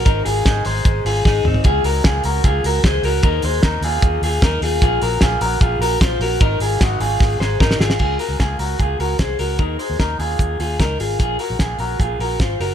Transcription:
<<
  \new Staff \with { instrumentName = "Clean electric guitar" } { \time 4/4 \key des \major \tempo 4 = 151 <ees' bes'>8 <f' aes'>8 <ees' aes'>8 <aes' c''>4 <f' aes'>8 <ees' aes'>8 <c' ees'>8 | <f' aes'>8 <ges' bes'>8 <f' aes'>8 <ges' bes'>8 <f' aes'>8 <ges' bes'>8 <aes' c''>8 <ges' bes'>8 | <ees' bes'>8 <aes' c''>8 <ees' bes'>8 <f' aes'>4 <f' aes'>8 <ees' bes'>8 <f' aes'>8 | <f' aes'>8 <ges' bes'>8 <f' aes'>8 <ges' bes'>8 <f' aes'>8 <ges' bes'>8 <f' c''>8 <ges' bes'>8 |
<ees' bes'>8 <f' aes'>8 <ees' ges'>8 <f' aes'>4 <aes' c''>8 <ees' bes'>8 <f' aes'>8 | <f' aes'>8 <ges' bes'>8 <f' aes'>8 <ges' bes'>8 <f' aes'>8 <ges' bes'>8 <aes' c''>8 <ges' bes'>8 | <ees' bes'>8 <aes' c''>8 <ees' bes'>8 <f' aes'>4 <f' aes'>8 <ees' bes'>8 <f' aes'>8 | <f' aes'>8 <ges' bes'>8 <f' aes'>8 <ges' bes'>8 <f' aes'>8 <ges' bes'>8 <f' c''>8 <ges' bes'>8 | }
  \new Staff \with { instrumentName = "Fingered electric bass" } { \clef bass \time 4/4 \key des \major aes,,8 aes,,8 aes,,8 aes,,8 aes,,8 aes,,8 aes,,8 aes,,8 | des,8 des,8 des,8 des,8 des,8 des,8 des,8 des,8 | ees,8 ees,8 ees,8 ees,8 ees,8 ees,8 ees,8 ees,8 | bes,,8 bes,,8 bes,,8 bes,,8 bes,,8 bes,,8 bes,,8 bes,,8 |
aes,,8 aes,,8 aes,,8 aes,,8 aes,,8 aes,,8 aes,,8 aes,,8 | des,8 r16 des,16 des,8 des,8 des,8 des,8 r8 des,8 | ees,8 r16 ees,16 ees,8 ees,8 ees,8 ees,8 des,8 aes,,8 | bes,,8 r16 bes,,16 bes,,8 bes,,8 bes,,8 bes,,8 aes,,8 ges,,8 | }
  \new DrumStaff \with { instrumentName = "Drums" } \drummode { \time 4/4 <hhp bd cymr>8 hho8 <hhp bd cymr sn>8 hho8 <hhp bd cymr>8 hho8 <bd sn>8 toml16 tomfh16 | <hhp bd cymr>8 hho8 <hhp bd cymr sn>8 hho8 <hhp bd cymr>8 hho8 <hhp bd cymr sn>8 hho8 | <hhp bd cymr>8 hho8 <hhp bd cymr sn>8 hho8 <hhp bd cymr>8 hho8 <hhp bd cymr sn>8 hho8 | <hhp bd cymr>8 hho8 <hhp bd cymr sn>8 hho8 <hhp bd cymr>8 hho8 <hhp bd cymr sn>8 hho8 |
<hhp bd cymr>8 hho8 <hhp bd cymr sn>8 hho8 <bd sn>8 sn8 <bd sn>16 sn16 sn16 sn16 | <cymc bd>8 hho8 <hh bd sn>8 hho8 <hh bd>8 hho8 <hh bd sn>8 hho8 | <hh bd>8 hho8 <hh bd sn>8 hho8 <hh bd>8 hho8 <hh bd sn>8 hho8 | <hh bd>8 hho8 <hh bd sn>8 hho8 <hh bd>8 hho8 <hh bd sn>8 hho8 | }
>>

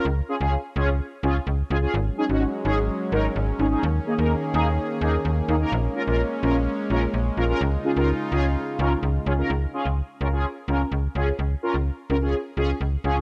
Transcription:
<<
  \new Staff \with { instrumentName = "Analog polysynth" } { \time 4/4 \key des \major \tempo 4 = 127 r8 <des' f' aes'>16 <des' f' aes'>16 r8 <des' f' aes'>16 r8. <des' f' aes'>16 r8. <des' f' aes'>16 <des' f' aes'>16 | r8 <des' ees' aes'>16 <des' ees' ges'>16 r8 <des' ees' aes'>16 r8. <des' ees' bes'>16 r8. <des' ees' aes'>16 <des' ees' aes'>16 | r8 <bes ees' aes'>16 <bes ees' bes'>16 r8 <bes ees' aes'>16 r8. <bes ees' aes'>16 r8. <bes ees' aes'>16 <bes ees' bes'>16 | r8 <des' f' bes'>16 <des' f' bes'>16 r8 <des' f' bes'>16 r8. <des' f' bes'>16 r8. <des' f' bes'>16 <des' f' bes'>16 |
r8 <des' f' aes'>16 <des' f' bes'>16 r8 <des' f' aes'>16 r8. <des' f' bes'>16 r8. <des' f' aes'>16 <des' f' bes'>16 | r8 <des' f' aes'>16 r8. <des' f' bes'>16 <des' f' aes'>16 r8 <des' f' bes'>16 r8. <des' f' aes'>16 r16 | r8 <des' f' bes'>16 r8. <des' f' bes'>16 <des' f' aes'>16 r8 <des' f' aes'>16 r8. <des' f' aes'>16 r16 | }
  \new Staff \with { instrumentName = "Analog synth pad" } { \time 4/4 \key des \major << { r1 | <aes des'>1 | <ees aes'>1 | des'1 |
<des ees' f'>1 | r1 | r1 | } \\ { r1 | ges1 | bes1 | aes1~ |
aes1 | r1 | r1 | } >> }
  \new Staff \with { instrumentName = "FM bass" } { \clef bass \time 4/4 \key des \major des,8 r16 des,8 r16 des,8. r16 des,8 des,8 des,8 | aes,,8 r16 aes,,8 r16 aes,,8. r16 aes,,8 aes,,8 aes,,8 | ees,8 r16 ees,8 r16 ees,8. r16 ees,8 ees,8 ees,8 | bes,,8 r16 bes,,8 r16 bes,,8. r16 bes,,8 bes,,8 bes,,8 |
des,8 r16 des,8 r16 des,8. r16 des,8 des,8 des,8 | des,8 r16 des,8 r16 des,8. r16 des,8 des,8 des,8 | des,8 r16 des,8 r16 des,8. r16 des,8 des,8 des,8 | }
>>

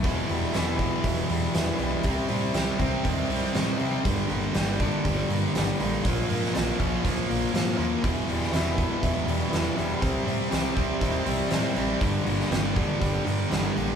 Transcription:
<<
  \new Staff \with { instrumentName = "Clean electric guitar" } { \clef bass \time 4/4 \key c \lydian \tempo 4 = 120 e,8 g8 e'8 b8 e8 g8 e8 g8 | c8 g8 g'8 c'8 ees8 g8 ees8 g8 | g,8 bes8 g'8 d'8 g8 bes8 g8 bes8 | ais,8 ais8 eis'8 cis'8 eis8 ais8 eis8 ais8 |
e,8 g8 e'8 b8 e8 g8 e8 g8 | c8 g8 g'8 c'8 ees8 g8 ees8 g8 | g,8 bes8 g'8 d'8 g8 bes8 g8 bes8 | }
  \new Staff \with { instrumentName = "Distorted electric guitar" } { \clef bass \time 4/4 \key c \lydian <e, b, e>8 <e, b, e>8 <e, b, e>8 <e, b, e>8 <e, b, e>8 <e, b, e>8 <e, b, e>8 <e, b, e>8 | <c g c'>8 <c g c'>8 <c g c'>8 <c g c'>8 <c g c'>8 <c g c'>8 <c g c'>8 <c g c'>8 | <g, d g>8 <g, d g>8 <g, d g>8 <g, d g>8 <g, d g>8 <g, d g>8 <g, d g>8 <g, d g>8 | <ais, eis ais>8 <ais, eis ais>8 <ais, eis ais>8 <ais, eis ais>8 <ais, eis ais>8 <ais, eis ais>8 <ais, eis ais>8 <ais, eis ais>8 |
<e, b, e>8 <e, b, e>8 <e, b, e>8 <e, b, e>8 <e, b, e>8 <e, b, e>8 <e, b, e>8 <e, b, e>8 | <c g c'>8 <c g c'>8 <c g c'>8 <c g c'>8 <c g c'>8 <c g c'>8 <c g c'>8 <c g c'>8 | <g, d g>8 <g, d g>8 <g, d g>8 <g, d g>8 <g, d g>8 <g, d g>8 <g, d g>8 <g, d g>8 | }
  \new Staff \with { instrumentName = "Distorted electric guitar" } { \clef bass \time 4/4 \key c \lydian <e, b, e>8 <e, b, e>8 <e, b, e>8 <e, b, e>8 <e, b, e>8 <e, b, e>8 <e, b, e>8 <e, b, e>8 | <c g c'>8 <c g c'>8 <c g c'>8 <c g c'>8 <c g c'>8 <c g c'>8 <c g c'>8 <c g c'>8 | <g, d g>8 <g, d g>8 <g, d g>8 <g, d g>8 <g, d g>8 <g, d g>8 <g, d g>8 <g, d g>8 | <ais, eis ais>8 <ais, eis ais>8 <ais, eis ais>8 <ais, eis ais>8 <ais, eis ais>8 <ais, eis ais>8 <ais, eis ais>8 <ais, eis ais>8 |
<e, b, e>8 <e, b, e>8 <e, b, e>8 <e, b, e>8 <e, b, e>8 <e, b, e>8 <e, b, e>8 <e, b, e>8 | <c g c'>8 <c g c'>8 <c g c'>8 <c g c'>8 <c g c'>8 <c g c'>8 <c g c'>8 <c g c'>8 | <g, d g>8 <g, d g>8 <g, d g>8 <g, d g>8 <g, d g>8 <g, d g>8 <g, d g>8 <g, d g>8 | }
  \new Staff \with { instrumentName = "Fingered electric bass" } { \clef bass \time 4/4 \key c \lydian r8 e,,8 e,,4 e,,8 e,8 e,,8 b,,8 | c,8 a,8 c,8 c,8 ees,8 c,8 a,8 c8 | g,,8 g,,8 g,,4 g,,8 g,8 g,,8 a,,8 | ais,,8 gis,8 ais,,8 ais,,8 cis,8 ais,,8 gis,8 dis,8 |
e,,8 e,,8 e,,4 e,,8 e,8 e,,8 e,,8 | c,8 a,8 c,8 c,8 ees,8 c,8 a,8 a,,8 | g,,8 g,,8 g,,4 g,,8 g,8 g,,8 a,,8 | }
  \new DrumStaff \with { instrumentName = "Drums" } \drummode { \time 4/4 <hho bd>8 hho8 <hho sn>8 <hho bd>8 <hho bd>8 hho8 <hho sn>8 hho8 | <hho bd>8 hho8 <hho sn>8 <hho bd>8 <hho bd>8 hho8 <hho sn>8 hho8 | <hho bd>8 hho8 <hho sn>8 <hho bd>8 <hho bd>8 hho8 <hho sn>8 hho8 | <hho bd>8 hho16 sn16 <hho sn>8 <hho bd>8 <hho bd>8 hho8 <hho sn>8 hho8 |
<hho bd>8 hho16 sn16 <hho sn>8 <hho bd>8 <hho bd>8 hho8 <hho sn>8 hho8 | <hho bd>8 hho8 <hho sn>8 <hho bd>8 <hho bd>8 hho8 <hho sn>8 hho8 | <hho bd>8 hho16 sn16 <hho sn>8 <hho bd>8 <hho bd>8 hho8 <hho sn>8 hho8 | }
>>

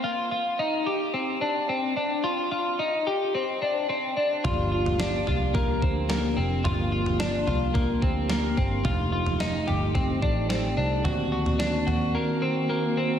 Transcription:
<<
  \new Staff \with { instrumentName = "Clean electric guitar" } { \time 4/4 \key g \minor \tempo 4 = 109 f'8 f'8 ees'8 g'8 c'8 d'8 c'8 d'8 | f'8 f'8 ees'8 g'8 c'8 d'8 c'8 d'8 | f'8 f'8 d'8 f'8 bes8 c'8 bes8 c'8 | f'8 f'8 d'8 f'8 bes8 c'8 bes8 c'8 |
f'8 f'8 ees'8 g'8 c'8 d'8 c'8 d'8 | fis'8 fis'8 d'8 fis'8 bes8 c'8 bes8 c'8 | }
  \new Staff \with { instrumentName = "Tonewheel organ" } { \time 4/4 \key g \minor << { r1 | r1 | <f g'>1~ | <f g'>1~ |
<f g'>1 | <ees fis'>1 | } \\ { r1 | r1 | <bes d'>1~ | <bes d'>1 |
<a ees'>1 | <bes c'>1 | } >> }
  \new Staff \with { instrumentName = "Picked electric bass" } { \clef bass \time 4/4 \key g \minor r1 | r1 | g,,4. c,4 d,4 f,,8 | g,,4. c,4 d,4 g,,8 |
f,,4. g,,4 a,,4 c,8 | d,4. ees,8 r2 | }
  \new DrumStaff \with { instrumentName = "Drums" } \drummode { \time 4/4 r4 r4 r4 r4 | r4 r4 r4 r4 | <bd tomfh>8. tomfh16 sn8 tomfh8 <bd tomfh>8 bd8 sn4 | tomfh8. tomfh16 sn8 tomfh8 <bd tomfh>8 bd8 sn8 bd8 |
<bd tomfh>8. tomfh16 sn8 tomfh8 <bd tomfh>8 bd8 sn4 | tomfh8. tomfh16 sn8 tomfh8 r4 r4 | }
>>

